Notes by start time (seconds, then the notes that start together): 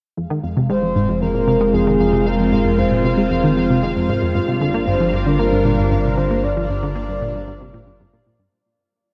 0.17 F1 F2 G#3 F5
0.31 D#3
0.44 F2
0.56 C3 C4
0.70 G#3 F4 C5
0.83 F2 C5
0.96 G#2
1.09 F2
1.22 F2 A#4
1.35 A#2
1.48 C3
1.61 G#3
1.74 F2 G#4
1.87 D#3 F5
2.00 F2
2.13 C3
2.26 G#3 A#4
2.39 F2
2.52 G#2
2.65 F2
2.78 F2 C5
2.91 A#2
3.04 C3
3.17 G#3
3.30 F2
3.43 D#3
3.57 F2
3.70 C3
3.83 G#3
3.96 F2
4.09 G#2
4.22 F2
4.35 G1 G2 G3
4.40 D4
4.48 C3
4.61 D3 A#4
4.74 A#3
4.87 G2 C5
5.00 F3
5.13 G2
5.26 D3
5.39 A#3 A#4
5.52 G2
5.65 A#2
5.79 G2
5.91 G2
6.05 C3
6.17 D3 C5
6.31 A#3
6.43 G2 D5
6.57 F3
6.70 G2
6.83 D3
6.96 A#3
7.09 G2
7.22 A#2
7.35 G2
7.48 G2
7.61 C3
7.74 A#2
7.87 G2
8.00 G2
8.13 A#2
8.26 A#2
8.39 G2